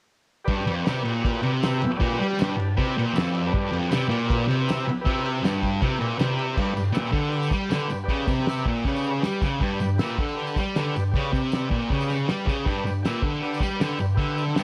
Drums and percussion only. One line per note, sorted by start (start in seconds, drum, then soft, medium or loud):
0.48 kick loud
0.48 ride loud
0.60 snare soft
0.68 ride medium
0.86 snare loud
0.86 ride loud
0.86 tambourine medium
1.06 ride medium
1.25 kick loud
1.25 ride loud
1.43 ride medium
1.62 snare loud
1.62 ride loud
1.62 tambourine medium
1.82 ride medium
2.01 kick loud
2.01 ride loud
2.13 snare soft
2.22 ride medium
2.33 snare soft
2.39 snare loud
2.39 ride loud
2.39 tambourine loud
2.59 ride medium
2.78 kick loud
2.78 ride medium
2.99 ride medium
3.16 snare loud
3.16 ride medium
3.16 tambourine medium
3.34 ride medium
3.54 kick loud
3.54 ride loud
3.73 ride medium
3.91 snare loud
3.91 ride loud
3.91 tambourine loud
4.11 ride medium
4.30 kick loud
4.30 ride loud
4.50 ride medium
4.69 snare loud
4.69 ride loud
4.69 tambourine medium
4.89 ride medium
5.06 kick loud
5.06 ride loud
5.26 ride medium
5.44 snare loud
5.44 ride loud
5.44 tambourine loud
5.63 kick medium
5.63 ride medium
5.82 kick loud
5.82 ride loud
6.02 ride medium
6.19 snare loud
6.19 ride medium
6.19 tambourine medium
6.39 ride medium
6.57 kick loud
6.57 crash loud
6.77 tambourine medium
6.95 snare loud
6.95 open hi-hat medium
6.95 tambourine loud
7.13 kick loud
7.23 tambourine soft
7.32 open hi-hat medium
7.32 tambourine soft
7.43 tambourine medium
7.51 kick medium
7.51 snare soft
7.51 tambourine medium
7.71 snare loud
7.71 open hi-hat medium
7.71 tambourine medium
7.80 tambourine soft
7.90 tambourine medium
8.00 tambourine soft
8.08 kick loud
8.08 open hi-hat medium
8.28 kick loud
8.28 tambourine medium
8.39 snare soft
8.46 snare loud
8.46 open hi-hat medium
8.46 tambourine loud
8.66 kick loud
8.77 tambourine soft
8.85 kick loud
8.85 open hi-hat medium
8.85 tambourine soft
8.96 tambourine medium
9.04 tambourine medium
9.22 snare loud
9.22 open hi-hat medium
9.22 tambourine medium
9.42 kick loud
9.42 tambourine medium
9.61 kick loud
9.61 open hi-hat medium
9.80 tambourine medium
9.98 snare loud
9.98 open hi-hat medium
9.98 tambourine loud
10.18 kick loud
10.28 tambourine soft
10.38 open hi-hat medium
10.38 tambourine soft
10.47 tambourine medium
10.56 kick medium
10.56 tambourine medium
10.75 snare loud
10.75 open hi-hat medium
10.75 tambourine medium
10.96 tambourine medium
11.07 tambourine soft
11.14 kick loud
11.14 open hi-hat medium
11.14 tambourine soft
11.25 tambourine soft
11.33 kick loud
11.33 tambourine medium
11.44 tambourine soft
11.52 snare loud
11.52 open hi-hat medium
11.52 tambourine medium
11.71 kick loud
11.82 tambourine soft
11.90 kick loud
11.90 open hi-hat medium
11.90 tambourine soft
12.01 tambourine medium
12.10 snare soft
12.10 tambourine medium
12.20 tambourine soft
12.28 snare loud
12.28 open hi-hat medium
12.28 tambourine medium
12.39 tambourine soft
12.47 kick loud
12.47 tambourine medium
12.66 kick loud
12.66 open hi-hat medium
12.87 tambourine medium
13.05 snare loud
13.05 open hi-hat medium
13.05 tambourine loud
13.23 kick loud
13.34 tambourine soft
13.43 open hi-hat medium
13.43 tambourine soft
13.54 tambourine medium
13.61 kick loud
13.61 snare soft
13.61 tambourine medium
13.80 snare loud
13.80 open hi-hat medium
13.80 tambourine loud
13.99 tambourine medium
14.17 kick loud
14.17 open hi-hat medium
14.38 tambourine medium
14.47 snare soft
14.55 snare loud
14.55 open hi-hat medium
14.55 tambourine loud